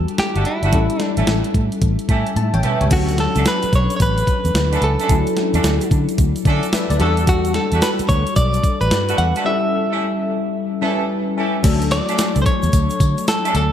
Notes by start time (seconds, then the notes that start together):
Already playing: G3 D4 F#4 A4
0.08 closed hi-hat
0.18 G4, muted fingered electric bass stroke, snare, closed hi-hat
0.35 G1 A3 D4 F#4 G4 A4, closed hi-hat
0.45 E4, closed hi-hat
0.63 G1 A3 D4 F#4 G4 A4, closed hi-hat
0.72 A1 G3 C#4 E4 A4, kick, closed hi-hat
0.90 closed hi-hat
1.00 D4, snare, closed hi-hat
1.17 A1 A3 C#4 E4 G4 A4, closed hi-hat
1.27 A1, snare, closed hi-hat
1.44 closed hi-hat
1.54 A2, kick, closed hi-hat
1.72 closed hi-hat
1.82 A1, kick, closed hi-hat
1.99 closed hi-hat
2.09 A2 A3 C#4 E4 G4 A4, kick, closed hi-hat
2.27 closed hi-hat
2.36 A2 E5 A5, closed hi-hat, high tom
2.54 A1 C#5 G5, closed hi-hat, mid tom
2.63 A3 C#4 E4 G4 A4 B4 E5, closed hi-hat, mid tom
2.81 C#2 G4 C#5, closed hi-hat, floor tom
2.90 D2 F#3 C#4 D4 F#4 A4, kick, closed hi-hat, crash, shaker
3.09 closed hi-hat, shaker
3.18 A4, snare, closed hi-hat
3.36 C#2 A3 C#4 D4 F#4 A4, closed hi-hat, shaker
3.45 B4, snare, closed hi-hat, shaker
3.63 muted fingered electric bass stroke, closed hi-hat, shaker
3.73 B1 C#5, kick, closed hi-hat, shaker
3.90 closed hi-hat, shaker
3.96 A1 C#5, kick, closed hi-hat
4.01 B4, shaker
4.18 closed hi-hat, shaker
4.27 kick, closed hi-hat, shaker
4.45 E2, closed hi-hat, shaker
4.54 D2, snare, closed hi-hat, shaker
4.72 A3 C#4 D4 F#4 A4, closed hi-hat, shaker
4.82 C#2 A4, closed hi-hat
5.00 A3 C#4 D4 F#4 A4, closed hi-hat, shaker
5.08 D2 F#3 C#4 D4 E4, kick, closed hi-hat, shaker
5.27 closed hi-hat, shaker
5.37 snare, closed hi-hat
5.54 E2 A3 C#4 D4 F#4 A4, closed hi-hat, shaker
5.64 D2, snare, closed hi-hat, shaker
5.81 closed hi-hat, shaker
5.91 D3, kick, closed hi-hat, shaker
6.09 closed hi-hat, shaker
6.18 D2, kick, closed hi-hat, shaker
6.36 closed hi-hat, shaker
6.45 D3 A3 C#4 D4 F#4 A4 D5, kick, closed hi-hat, shaker
6.63 closed hi-hat, shaker
6.73 B4 E5, muted fingered electric bass stroke, snare, closed hi-hat, shaker
6.90 D2 A4 D5, closed hi-hat, shaker
6.99 E2 G3 A3 D4 F#4 G4 A4, closed hi-hat
7.17 closed hi-hat, shaker
7.27 F#4, kick, closed hi-hat, shaker
7.45 closed hi-hat, shaker
7.54 A4, snare, closed hi-hat
7.72 E2 A3 D4 F#4 G4 A4, closed hi-hat, shaker
7.82 B4, snare, closed hi-hat, shaker
7.99 muted fingered electric bass stroke, closed hi-hat, shaker
8.09 D2 C#5, kick, closed hi-hat, shaker
8.27 closed hi-hat, shaker
8.36 B1 D5, kick, closed hi-hat, shaker
8.54 closed hi-hat, shaker
8.64 kick, closed hi-hat, shaker
8.81 A1 B4, closed hi-hat, shaker
8.91 G2, snare, closed hi-hat, shaker
9.08 A3 D4 F#4 G4 A4, closed hi-hat, shaker
9.18 E2 F#5, closed hi-hat
9.36 A3 D4 F#4 G4 A4, closed hi-hat, shaker
9.44 G3 C#4 E4 A4 E5
9.90 A3 C#4 E4 G4 A4
10.81 G3 A3 C#4 E4 G4 A4 B4
11.36 A3 C#4 E4 G4 A4
11.63 D2 F#3 A3 D4 A4, kick, closed hi-hat, crash, tambourine, shaker
11.82 closed hi-hat, shaker
11.91 D5, snare, closed hi-hat, tambourine
12.08 A3 C#4 D4 F#4 A4, closed hi-hat, shaker
12.18 snare, closed hi-hat, tambourine, shaker
12.36 C#2, closed hi-hat, shaker
12.42 C5, shaker
12.46 C#5, kick, closed hi-hat
12.63 E2, closed hi-hat, shaker
12.73 D2, kick, closed hi-hat, tambourine, shaker
12.90 closed hi-hat, shaker
13.00 D3, kick, closed hi-hat, tambourine, shaker
13.18 closed hi-hat, shaker
13.28 A4, snare, closed hi-hat, tambourine, shaker
13.45 A3 C#4 D4 F#4 A4, closed hi-hat, shaker
13.55 D2 A4, closed hi-hat, tambourine